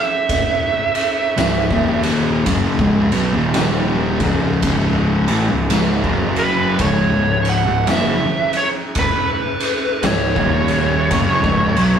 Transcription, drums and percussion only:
0.29 kick, ride
0.95 ride
1.38 snare, ride
1.71 kick
2.03 ride
2.46 kick, ride
2.79 kick
3.12 ride
3.54 snare, ride
4.20 kick, ride
4.62 kick, ride
5.28 ride
5.70 snare, ride
6.04 kick
6.36 ride
6.79 kick, ride
7.45 ride
7.87 snare, ride
8.53 ride
8.95 kick, ride
9.60 ride
10.03 snare, ride
10.36 kick
10.68 ride
11.11 kick, ride
11.44 kick
11.77 ride

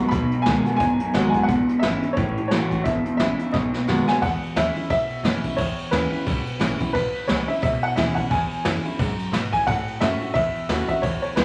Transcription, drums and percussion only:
0.12 kick, closed hi-hat
0.31 closed hi-hat
0.46 snare, closed hi-hat
0.66 closed hi-hat
0.80 kick, closed hi-hat
1.00 closed hi-hat
1.14 snare, closed hi-hat
1.34 kick, closed hi-hat
1.49 kick, closed hi-hat
1.69 closed hi-hat
1.83 snare, closed hi-hat
2.03 closed hi-hat
2.17 kick, closed hi-hat
2.37 closed hi-hat
2.51 snare, closed hi-hat
2.71 kick, closed hi-hat
2.86 kick, closed hi-hat
3.05 closed hi-hat
3.19 snare, closed hi-hat
3.39 closed hi-hat
3.54 kick, snare
3.74 snare
3.88 snare
4.08 snare
4.22 kick, ride
4.42 ride
4.56 snare, ride
4.76 ride
4.90 kick, ride
5.10 ride
5.25 snare, ride
5.44 kick, ride
5.58 kick, ride
5.78 ride
5.93 snare, ride
6.13 ride
6.27 kick, ride
6.47 ride
6.61 snare, ride
6.81 kick, ride
6.95 kick, ride
7.15 ride
7.29 snare, ride
7.49 ride
7.63 kick, ride
7.83 ride
7.97 snare, ride
8.17 kick, ride
8.31 kick, ride
8.51 ride
8.65 snare, ride
8.85 ride
8.99 kick, ride
9.19 ride
9.33 snare, ride
9.53 kick, ride
9.67 kick, ride
9.87 ride
10.01 snare, ride
10.21 ride
10.35 kick, ride
10.55 ride
10.69 snare, ride
10.89 kick, ride
11.03 kick, ride
11.23 ride
11.37 snare, ride

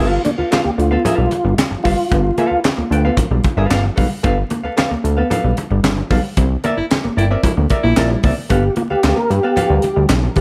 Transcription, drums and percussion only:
0.00 muted conga
0.25 closed hi-hat, muted conga
0.52 snare, clap, closed hi-hat, high conga
0.80 closed hi-hat
1.05 closed hi-hat, low conga
1.31 closed hi-hat, muted conga
1.58 snare, clap, closed hi-hat, high conga
1.85 kick, open hi-hat, high conga
2.12 kick, closed hi-hat, muted conga
2.38 closed hi-hat, muted conga
2.64 snare, clap, closed hi-hat, high conga
2.92 closed hi-hat
3.17 kick, closed hi-hat, low conga
3.44 kick, closed hi-hat, muted conga
3.70 snare, clap, closed hi-hat, high conga
3.97 kick, open hi-hat, high conga
4.24 kick, closed hi-hat, muted conga
4.50 closed hi-hat, muted conga
4.77 snare, clap, closed hi-hat, high conga
5.05 closed hi-hat
5.31 closed hi-hat, low conga
5.57 closed hi-hat, muted conga
5.84 snare, clap, closed hi-hat, high conga
6.10 kick, open hi-hat, high conga
6.37 kick, closed hi-hat, muted conga
6.64 closed hi-hat, muted conga
6.91 snare, clap, closed hi-hat, high conga
7.18 closed hi-hat
7.43 kick, closed hi-hat, muted conga, low conga
7.70 kick, closed hi-hat, muted conga
7.96 snare, clap, closed hi-hat, high conga
8.23 kick, open hi-hat, high conga
8.50 kick, closed hi-hat, muted conga
8.76 closed hi-hat, muted conga
9.03 snare, clap, closed hi-hat, high conga
9.31 closed hi-hat
9.57 closed hi-hat, muted conga, low conga
9.82 closed hi-hat, muted conga
10.09 snare, clap, closed hi-hat, high conga
10.36 kick, open hi-hat, high conga

